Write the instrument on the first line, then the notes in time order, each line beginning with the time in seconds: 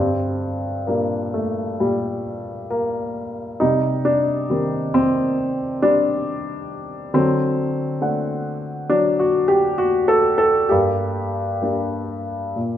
grand piano
Already playing: G2 G3 C4
0.87 A#2 G3 A#3 D4
1.34 A3
1.80 A#2 G3
2.70 A#3
3.60 C3 G3 D#4
4.05 D4
4.49 D#3 G3 C4
4.94 C4
5.82 G3 D4
7.14 D3 F#3 C4
8.01 A3 D4 F#5
8.89 F#3 D4
9.19 F#4
9.48 G4
9.78 F#4
10.08 A4
10.38 A4
10.69 G2 A#3 G4
11.62 G3 A#3 D4
12.56 A#2